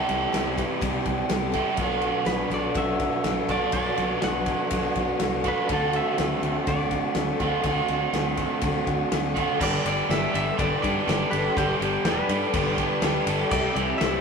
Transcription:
Already playing: C3 E3 G3 E4 G4 A4
0.09 C2 G3 E4 G4, ride
0.33 C2 E3 G3 E4 C5, snare, ride
0.37 G4
0.57 G3 E4 G4 B4, kick, ride
0.81 C2 C3 E3 G3 E4 G4, kick, ride
1.06 C2 G3 E4 G4, kick, ride
1.29 C2 E3 G3 E4 G4 A4, snare, ride
1.52 G4 A4, kick, ride
1.56 C3 E3 G3 E4
1.77 B1 B2 F#3 B3 D4 F#4, kick, ride
1.82 F#4
2.02 D4 F#4, ride
2.07 B3
2.25 B1 F#3 B4, snare, ride
2.30 B3 D4 F#4
2.50 B1 F#4 A4 D5, ride
2.54 B3 D4
2.74 B1 B2 F#3 B3 D4 F#4 E5, kick, ride
2.79 F#4
3.00 B3 D4 F#4, kick, ride
3.24 B1 F#3 B3 D4 F#4 A4, snare, ride
3.49 B1 F#3 D4 F#4 A4 D5, kick, ride
3.53 B2 B3
3.72 B1 B2 F#3 B3 D4 F#4 D5, kick, ride
3.76 F#4
3.98 B1 B3 D4 F#4, ride
4.22 B1 F#3 B3 D4 F#4 B4 F#5, snare, ride
4.46 F#4 A4, kick, ride
4.50 B3 D4
4.71 B1 B2 F#3 F#4, kick, ride
4.75 B3 D4 F#4
4.95 B1 B3 D4 F#4, kick, ride
5.20 C2 F#3 B3 D4 F#4 A4, snare, ride
5.44 B2 F#3 D4 F#4 A4, kick, ride
5.48 B3 B4
5.69 D2 D3 A3 C4 F#4 A4, kick, ride
5.93 A3 C4 F#4 E5, ride
6.18 D2 D3 A3 C4 F#4 B4, snare, ride
6.42 D2 A3 C4 F#4 A4, ride
6.67 D2 D3 A3 C4 F#4 D5, kick, ride
6.71 F#4
6.91 C4 F#4, kick, ride
6.95 A3
7.15 D2 D3 A3 C4 F#4 A4, snare, ride
7.40 D2 D3 A3 C4 F#4 A4, kick, ride
7.63 D2 D3 A3 C4 F#4, kick, ride
7.88 D2 A3 C4 F#4, ride
8.13 D2 D3 A3 C4 F#4 B4, snare, ride
8.22 C5
8.37 A3 C4 F#4 A4, kick, ride
8.61 D2 D3 A3 C4 F#4, kick, ride
8.86 D2 A3 C4 F#4, kick, ride
9.11 D2 D3 A3 C4 F#4 A4, snare, ride
9.35 D3 A3 C4 F#4 A4, kick, ride
9.60 G1 G2 D3 G3 B3 D4 G4 D5, kick, crash
9.85 G1 G3 B3 D4 G4 D5, ride
10.09 G1 G3 B3 D4 G4 B4 E5, snare, ride
10.31 G1 G3 B3 D4 G4 A4, ride
10.36 E5
10.56 G1 G2 D3 G3 B3 D4 G4 D5, kick, ride
10.82 G2 G3 B3 D4 G4 D5, kick, ride
11.07 G1 G3 B3 D4 G4 A4, snare, ride
11.31 G1 D4 G4 A4 B4, ride
11.35 G3 B3
11.56 G1 G2 D3 G3 B3 D4 G4, kick, ride
11.80 G1 G3 B3 D4 G4, ride
12.05 E1 G3 B3 D4 G4 B4, snare, ride
12.29 G2 B3 D4 G4 A4, ride
12.33 G3
12.53 G1 G2 D3 G3 B3 D4 G4, kick, ride
12.78 G3 B3 D4 G4, kick, ride
13.02 D2 G3 B3 D4 G4 A4, snare, ride
13.26 G1 G3 B3 D4 G4 A4, ride
13.51 C2 C3 E3 G3 E4 G4 D5, kick, crash
13.75 C2 G3 E4 G4 D5, ride
13.98 C2 E3 G3 E4 G4 C5 E5, snare, ride

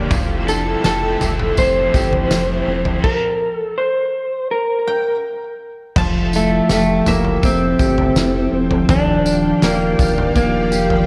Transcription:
Already playing: D#1 D#3 A#3 D4 G4 G5
0.10 F1 F3 A3 C4 E4 A4 E6, kick, floor tom, tambourine
0.14 G4
0.47 D4 E4 G4 A4, tambourine
0.52 C4
0.66 E4
0.84 F1 A3 C4 E4 G4 A4 A5, snare, tambourine
0.89 G4
1.20 F1 E4 G4, floor tom, tambourine
1.26 C4
1.39 floor tom
1.57 F1 F3 A3 C4 C5, kick, tambourine
1.61 E4 G4
1.94 G1 E4 G4, kick, tambourine
1.99 C4
2.12 floor tom
2.30 F1 A3 C4 E4, snare, tambourine
2.35 G4
2.67 E1 C4 E4 G4
2.72 C4
2.85 floor tom
3.04 A#4, kick, crash
3.56 A4
3.78 C5
4.51 A#4
4.88 G5
5.95 F1 F3 A4 E5 G5 A5, kick, floor tom, crash, tambourine
6.33 A3 E4, tambourine
6.69 F1 A3 G4, snare, tambourine
7.06 F1 A#3 E4 E5, floor tom, tambourine
7.25 floor tom
7.43 F1 C4, kick, tambourine
7.79 G1 G4, kick, tambourine
7.98 floor tom
8.15 F1 E4, snare, tambourine
8.52 E1 C4
8.71 floor tom
8.89 D#1 D#3 D4 D5 F5, kick, floor tom, tambourine
9.25 D4, tambourine
9.62 D#1 A#3 G4, snare, tambourine
9.98 D#1 D4, kick, floor tom, tambourine
10.18 floor tom
10.35 D#1 A#3, kick, tambourine
10.71 F1 G4, tambourine
10.90 floor tom

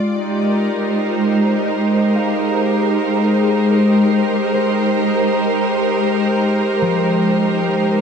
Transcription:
Already playing: G#3 D#4 F4 G4 D5 G5
0.16 D#4
0.28 G4
0.42 A#4 D5
0.88 C5
2.15 F5
4.54 C5
6.81 F3

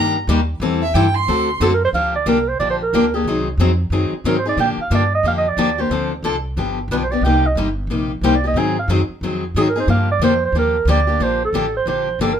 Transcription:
Already playing: G2 D#3 G3 A#3 D4 G4
0.27 D#2 D#3 G3 A#3 D4 G4
0.60 E2 E3 G3 C4 E4 A4
0.82 E5
0.94 G2 E3 G3 C4 E4 A4 G5
1.15 C6
1.28 D2 D3 A3 C4 F#4 A4
1.60 F#2 D3 A3 C4 F#4 A4
1.74 A#4
1.85 C5
1.93 D2 D3 F3 A#3 D4 G4 F5
2.15 D5
2.26 C2 D3 F3 A#3 D4 G4 A#4
2.48 C5
2.60 A#1 D3 F3 A#3 D4 G4 D5
2.70 C5
2.83 A#4
2.93 D2 D3 F3 A#3 D4 G4
3.14 A#3 D4 G4 G#4
3.24 C2 D#3 F#3 C4
3.28 D#4 G#4
3.57 F2 D#3 F#3 C4 D#4 G#4
3.90 F#2 D#3 F#3 C4 D#4 G#4
4.11 muted upright bass stroke
4.24 G#2 D#3 F#3 C4 D#4 G#4 A#4
4.39 C5
4.46 C4 D#4 G#4 D5
4.57 A#2 D3 F3 A#3 D4 G4 G5
4.78 F5, muted upright bass stroke
4.90 G2 D3 F3 A#3 D4 G4
4.95 D5
5.15 D#5
5.23 F2 D3 F3 A#3 D4 G4
5.28 F5
5.38 D#5
5.48 D5
5.57 D#2 D3 F3 A#3 D4 G4
5.78 A#3 D4 G4 C5
5.90 D2 D3 F3 C4 D4 A4
6.23 C2 D3 F3 C4 D4 A4
6.57 G1 D3 F3 B3 D4 G4
6.88 B1 D3 F3 B3 B4
6.92 D4 G4
7.03 C5
7.12 B3 D4 G4 D5
7.22 C2 C3 G3 G5
7.26 A#3 D#4 G4
7.46 D#5
7.55 G1 C3 G3 A#3 D#4 G4
7.87 A#1 C3 G3 A#3
7.91 D#4 G4
8.21 C2 C3 G3 A#3 D#4 G4 C5
8.36 D5
8.44 A#3 D#4 G4 D#5
8.54 G#2 D#3 F#3 C4 D#4 G#4 G#5
8.79 F5
8.88 F#2 D#3 F#3 C4 D#4 G#4
9.09 muted upright bass stroke
9.21 F2 D#3 F#3 C4 D#4 G#4
9.55 G#2 D#3 F#3 C4 D#4 G#4
9.69 A#4
9.76 C4 D#4 G#4
9.80 C5
9.87 G2 D3 F3 A#3 D4 G4 F5
10.11 D5
10.19 F2 D3 F3 A#3 D4
10.23 G4 C5
10.45 C5
10.52 D#2 D3 F3 A#3 D4 G4
10.58 A#4
10.85 D2 D3 F3 A#3 D4 G4
10.90 D5
11.07 A#3 D4 G4
11.19 A#1 D3 F3 A#3 D4 G4
11.24 C5
11.45 A4
11.53 A1 D3 F3 A#3 D4 G4
11.77 C5
11.86 A#1 D3 F3 A#3 D4 G4 C5
12.19 G1 D3 F3 A#3 D4 G4 A4
12.33 A#4

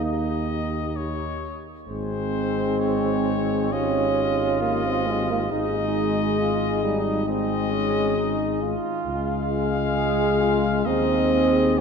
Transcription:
Already playing: D#2 A#3 D#4
0.03 G4 D#5
0.96 C#5
1.88 G#1 G#3 C4 G#4 C5
2.80 C#5
3.72 C#4 F4 G4 D#5
4.61 A#3 G4 D#5
4.85 C4
5.07 G#3
5.30 A#3
5.52 G#1 G#3 D#4 G#4 D#5
6.40 F4
6.83 G3 D#4
7.27 G#3 C4 G#4 D#5
7.72 C#4
8.17 D#4
8.62 F4
9.06 C#2 G#3 G#4 F5
9.96 G#4
10.41 F4
10.85 D#2 C4 D#4 G#4 D#5
11.32 G#4

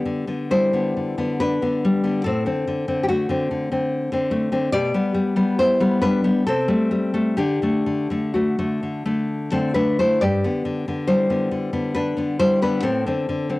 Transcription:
Already playing: B3 G4 D5
0.05 D3
0.27 D3 B3
0.51 G3 E4 C5
0.73 D3 B3
0.97 D3
1.18 D3 B3
1.40 D4 B4
1.62 D3 B3
1.85 G3
2.04 D3 B3
2.24 A2 C4 A4
2.46 D3 C4
2.68 D3
2.88 D3 C4
3.03 G4
3.09 A3 F#4
3.29 D3 C4
3.51 D3
3.72 D3 C4
4.12 D3 C4
4.31 A3
4.52 D3 C4
4.72 B2 G4 D5
4.94 G3 B3
5.14 G3
5.36 G3 B3
5.59 B3 E4 C5
5.80 G3 B3
6.01 G3 D4 B4
6.24 G3 B3
6.47 C3 C4 A4
6.68 G3 A3
6.91 G3
7.14 G3 A3
7.37 D3 D4 G4
7.62 D3 A3
7.86 D3
8.10 D3 A3
8.34 A3 F#4
8.59 D3 A3
8.83 D3
9.06 D3 A3
9.52 D3 A3 C4 A4
9.74 A3 D4 B4
9.99 D3 A3 E4 C5
10.21 G2 G4 D5
10.44 D3 B3
10.65 D3
10.88 D3 B3
11.07 G3 E4 C5
11.30 D3 B3
11.51 D3
11.73 D3 B3
11.95 D4 B4
12.17 D3 B3
12.39 G3 E4 C5
12.62 D3 B3 D4 B4
12.83 A2 C4 A4
13.06 D3 C4
13.29 D3
13.49 D3 C4

